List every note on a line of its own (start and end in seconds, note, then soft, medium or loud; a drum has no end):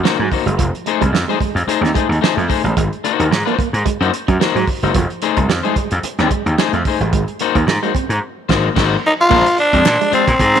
0.03 0.19 A#3 medium
0.03 0.19 D#4 medium
0.03 0.19 F#4 loud
0.03 0.18 C5 medium
0.03 snare loud
0.19 0.28 G#2 medium
0.19 0.27 F#3 medium
0.19 muted clean electric guitar stroke soft
0.32 0.43 A#3 medium
0.32 0.44 D#4 medium
0.32 0.44 F#4 medium
0.32 0.44 C5 medium
0.32 muted clean electric guitar stroke soft
0.32 kick medium
0.32 open hi-hat medium
0.46 0.55 F#1 medium
0.46 0.53 G#3 medium
0.46 muted clean electric guitar stroke soft
0.46 closed hi-hat soft
0.59 0.70 F1 medium
0.59 0.68 F3 medium
0.59 kick loud
0.59 closed hi-hat loud
0.75 closed hi-hat soft
0.86 1.02 A3 medium
0.86 1.02 D#4 medium
0.86 1.02 G#4 medium
0.86 1.02 C5 medium
0.86 muted clean electric guitar stroke soft
0.86 closed hi-hat medium
1.01 1.10 C2 medium
1.01 1.08 G#3 medium
1.01 kick medium
1.01 closed hi-hat medium
1.12 1.23 F2 medium
1.12 muted clean electric guitar stroke soft
1.12 snare medium
1.28 1.35 G#3 medium
1.28 1.39 A3 medium
1.28 1.39 D#4 medium
1.28 1.40 G#4 medium
1.28 1.40 C5 medium
1.28 closed hi-hat soft
1.40 1.50 G#3 medium
1.40 muted slap bass stroke soft
1.40 kick medium
1.40 closed hi-hat medium
1.55 1.64 F2 medium
1.55 muted clean electric guitar stroke medium
1.55 closed hi-hat medium
1.67 1.83 A3 medium
1.67 1.83 D#4 medium
1.67 1.82 G#4 medium
1.67 1.81 C5 medium
1.67 muted slap bass stroke soft
1.67 muted clean electric guitar stroke soft
1.67 closed hi-hat medium
1.81 1.91 D#2 medium
1.81 1.90 C4 medium
1.81 muted clean electric guitar stroke medium
1.81 snare soft
1.81 closed hi-hat soft
1.94 2.04 G#3 medium
1.94 2.06 A3 medium
1.94 2.07 D#4 medium
1.94 2.07 G#4 medium
1.94 2.07 C5 medium
1.94 kick loud
1.94 closed hi-hat medium
2.09 2.18 D#2 medium
2.09 muted clean electric guitar stroke soft
2.09 closed hi-hat soft
2.21 2.37 A3 medium
2.21 2.37 D#4 medium
2.21 2.36 G#4 medium
2.21 2.36 C5 loud
2.21 snare loud
2.37 2.46 F2 loud
2.37 2.45 A3 medium
2.37 muted clean electric guitar stroke soft
2.37 closed hi-hat soft
2.48 2.60 A3 medium
2.48 2.61 D#4 medium
2.48 2.61 G#4 medium
2.48 2.61 C5 medium
2.48 muted clean electric guitar stroke soft
2.48 kick medium
2.48 open hi-hat medium
2.64 2.73 A1 medium
2.64 2.72 G#3 medium
2.64 muted clean electric guitar stroke soft
2.64 closed hi-hat soft
2.77 2.88 G#1 loud
2.77 2.86 G#3 medium
2.77 kick loud
2.77 closed hi-hat medium
2.93 closed hi-hat soft
3.04 3.25 A#3 medium
3.04 3.25 D#4 medium
3.04 3.25 F#4 medium
3.04 3.26 C5 medium
3.04 muted clean electric guitar stroke soft
3.04 closed hi-hat medium
3.19 3.28 D#2 medium
3.19 3.27 A#3 medium
3.19 closed hi-hat medium
3.31 3.42 G#2 medium
3.31 muted clean electric guitar stroke soft
3.31 snare loud
3.46 3.54 A#3 medium
3.46 3.57 A#3 medium
3.46 3.58 D#4 medium
3.46 3.58 F#4 medium
3.46 3.58 C5 medium
3.46 closed hi-hat soft
3.58 3.68 A#3 medium
3.58 muted slap bass stroke soft
3.58 muted clean electric guitar stroke soft
3.58 kick medium
3.58 closed hi-hat medium
3.73 3.82 G#2 medium
3.73 muted clean electric guitar stroke soft
3.73 closed hi-hat medium
3.85 3.95 G#3 medium
3.85 muted clean electric guitar stroke soft
3.85 muted slap bass stroke soft
3.85 kick loud
3.85 closed hi-hat medium
4.00 4.09 F#2 medium
4.00 4.12 A#3 medium
4.00 4.12 D#4 medium
4.00 4.12 F#4 medium
4.00 4.13 C5 medium
4.00 muted clean electric guitar stroke soft
4.00 closed hi-hat soft
4.13 muted clean electric guitar stroke soft
4.13 closed hi-hat medium
4.28 4.37 F#2 loud
4.28 4.35 F#3 medium
4.28 muted clean electric guitar stroke soft
4.28 kick medium
4.28 closed hi-hat soft
4.40 4.55 A#3 medium
4.40 4.55 D#4 medium
4.40 4.56 F#4 medium
4.40 4.56 C5 medium
4.40 snare loud
4.55 4.64 G#2 medium
4.55 4.63 F#3 medium
4.55 closed hi-hat soft
4.67 muted clean electric guitar stroke soft
4.67 kick loud
4.67 open hi-hat medium
4.83 4.91 F#1 medium
4.83 4.90 G#3 medium
4.83 4.93 A#3 medium
4.83 4.93 D#4 medium
4.83 4.93 F#4 medium
4.83 4.92 C5 medium
4.83 closed hi-hat soft
4.94 5.06 F1 loud
4.94 5.04 F3 medium
4.94 kick loud
4.94 closed hi-hat loud
5.10 closed hi-hat soft
5.22 5.37 A3 medium
5.22 5.37 D#4 medium
5.22 5.38 G#4 medium
5.22 5.38 C5 medium
5.22 muted clean electric guitar stroke soft
5.22 closed hi-hat medium
5.37 5.46 C2 medium
5.37 5.45 G#3 medium
5.37 kick medium
5.37 closed hi-hat medium
5.48 5.59 F2 medium
5.48 muted clean electric guitar stroke soft
5.48 snare loud
5.63 5.72 G#3 medium
5.63 5.76 A3 medium
5.63 5.76 D#4 medium
5.63 5.76 G#4 medium
5.63 5.76 C5 medium
5.63 closed hi-hat soft
5.76 5.86 G#3 medium
5.76 muted slap bass stroke medium
5.76 muted clean electric guitar stroke soft
5.76 kick medium
5.76 closed hi-hat medium
5.91 6.00 F2 medium
5.91 muted clean electric guitar stroke soft
5.91 closed hi-hat medium
6.03 muted slap bass stroke soft
6.03 muted clean electric guitar stroke soft
6.03 closed hi-hat medium
6.18 6.27 D#2 medium
6.18 6.30 A3 medium
6.18 6.26 C4 medium
6.18 6.30 D#4 medium
6.18 6.31 G#4 medium
6.18 6.31 C5 medium
6.18 snare soft
6.18 closed hi-hat soft
6.31 6.41 G#3 medium
6.31 muted clean electric guitar stroke soft
6.31 kick medium
6.31 closed hi-hat medium
6.46 6.55 D#2 medium
6.46 muted clean electric guitar stroke soft
6.46 closed hi-hat soft
6.58 6.73 A3 medium
6.58 6.73 D#4 medium
6.58 6.73 G#4 medium
6.58 6.73 C5 medium
6.58 snare loud
6.73 6.82 F2 medium
6.73 6.81 A3 medium
6.73 muted clean electric guitar stroke soft
6.73 closed hi-hat soft
6.85 6.98 A3 medium
6.85 6.98 D#4 medium
6.85 6.98 G#4 medium
6.85 6.99 C5 medium
6.85 muted clean electric guitar stroke soft
6.85 kick loud
6.85 open hi-hat medium
7.00 7.13 A1 medium
7.00 7.09 G#3 medium
7.00 muted clean electric guitar stroke soft
7.00 closed hi-hat soft
7.13 7.24 G#1 medium
7.13 7.22 G#3 medium
7.13 kick loud
7.13 closed hi-hat medium
7.28 closed hi-hat soft
7.39 7.55 A#3 medium
7.39 7.56 D#4 medium
7.39 7.56 F#4 medium
7.39 7.56 C5 loud
7.39 muted clean electric guitar stroke soft
7.39 closed hi-hat medium
7.55 7.64 D#2 medium
7.55 7.63 A#3 medium
7.55 kick medium
7.55 closed hi-hat medium
7.66 7.78 G#2 loud
7.66 muted clean electric guitar stroke soft
7.66 snare loud
7.83 7.90 G#3 medium
7.83 7.94 A#3 medium
7.83 7.94 D#4 medium
7.83 7.94 F#4 medium
7.83 7.94 C5 medium
7.83 closed hi-hat soft
7.95 8.04 C4 medium
7.95 muted slap bass stroke soft
7.95 muted clean electric guitar stroke soft
7.95 kick medium
7.95 closed hi-hat medium
8.09 8.18 G#2 medium
8.09 muted clean electric guitar stroke soft
8.09 closed hi-hat medium
8.49 8.68 G#1 medium
8.49 8.69 A#3 loud
8.49 8.69 D#4 medium
8.49 8.68 F#4 medium
8.49 8.68 C5 medium
8.49 kick loud
8.49 snare medium
8.49 crash medium
8.75 8.96 G#1 medium
8.75 8.95 A#3 loud
8.75 8.95 D#4 loud
8.75 8.96 F#4 loud
8.75 8.96 C5 loud
8.75 kick loud
8.75 snare medium
8.75 crash medium
9.06 9.13 D#4 medium
9.21 9.56 F4 loud
9.29 9.42 A#1 loud
9.29 9.45 G#3 medium
9.29 9.39 A#3 medium
9.29 9.45 D4 medium
9.29 9.45 F4 loud
9.29 9.46 C5 medium
9.29 kick loud
9.29 crash medium
9.46 closed hi-hat medium
9.58 10.09 D4 loud
9.58 muted clean electric guitar stroke soft
9.58 closed hi-hat medium
9.73 9.82 F2 medium
9.73 9.81 G#3 medium
9.73 9.83 G#3 soft
9.73 9.83 D4 medium
9.73 9.83 F4 medium
9.73 9.82 C5 medium
9.73 kick medium
9.73 closed hi-hat medium
9.85 9.96 A#2 loud
9.85 muted clean electric guitar stroke soft
9.85 snare loud
9.85 clap loud
10.00 10.08 G#3 medium
10.00 muted clean electric guitar stroke soft
10.00 closed hi-hat soft
10.11 10.27 G#3 medium
10.11 10.22 G#3 medium
10.11 10.60 C4 loud
10.11 10.27 D4 medium
10.11 10.26 F4 medium
10.11 10.26 C5 medium
10.11 muted slap bass stroke medium
10.11 closed hi-hat medium
10.27 10.36 A#2 medium
10.27 muted clean electric guitar stroke soft
10.27 kick medium
10.27 closed hi-hat medium
10.39 10.59 G#2 loud
10.39 muted clean electric guitar stroke soft
10.39 kick medium
10.39 closed hi-hat medium
10.54 10.60 C4 medium
10.54 muted clean electric guitar stroke soft
10.54 snare soft
10.54 closed hi-hat soft